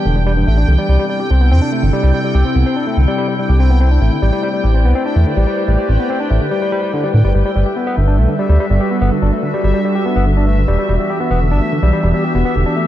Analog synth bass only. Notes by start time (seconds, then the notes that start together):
0.05 E1
0.47 A1
0.68 C2
0.89 C2
1.30 C2
1.51 E2
1.83 G1
2.03 C2
2.35 C2
2.56 C2
2.97 C2
3.49 C2
4.01 A1
4.22 A1
4.64 A1
4.85 C2
5.16 E2
5.37 A1
5.68 A1
5.89 A1
6.31 A1
7.14 A2
7.24 G1
7.35 G1
7.56 G1
7.97 G1
8.18 B1
8.49 D2
8.70 G1
9.01 G1
9.22 G1
9.64 G1
10.16 G1
10.68 E1
10.89 E1
11.31 E1
11.51 G1
11.83 B1
12.04 E1
12.35 E1
12.56 E1